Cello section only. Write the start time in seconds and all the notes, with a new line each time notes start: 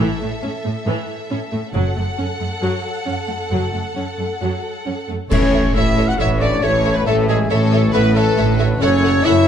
0.22 A2
0.43 A2
0.65 A2
0.86 A2
1.31 A2
1.52 A2
1.75 F#2
1.96 F#2
2.19 F#2
2.40 F#2
2.62 F#2
3.06 F#2
3.28 F#2
3.49 F#2
3.72 F#2
3.95 F#2
4.18 F#2
4.41 F#2
4.86 F#2
5.09 F#2
5.31 A2
5.75 A2
6.20 A2
6.62 A2
7.07 A2
7.51 A2
7.94 A2
8.37 A2
8.81 F#2
9.25 F#2